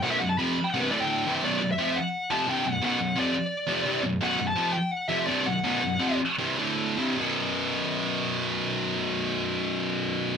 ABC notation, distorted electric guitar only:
X:1
M:4/4
L:1/8
Q:1/4=170
K:Bphr
V:1 name="Distorted electric guitar" clef=bass
[B,,,F,,B,,] [B,,,F,,] [^E,,C,^E,] z [C,,G,,C,] [D,,A,,D,]2 [C,,G,,C,] | [B,,,F,,B,,] [B,,,F,,] [^E,,C,^E,] z2 [E,,C,E,] [C,,G,,C,] [B,,,F,,] | [B,,,F,,B,,] [B,,,F,,] [^E,,C,^E,] z2 [E,,C,E,] [C,,G,,C,] [B,,,F,,] | [B,,,F,,B,,] [B,,,F,,] [^E,,C,^E,] z2 [E,,C,E,] [C,,G,,C,] [B,,,F,,] |
[B,,,F,,B,,] [B,,,F,,] [^E,,C,^E,] z [C,,G,,C,] [D,,A,,D,]2 [C,,G,,C,] | [B,,,F,,B,,]8- | [B,,,F,,B,,]8 |]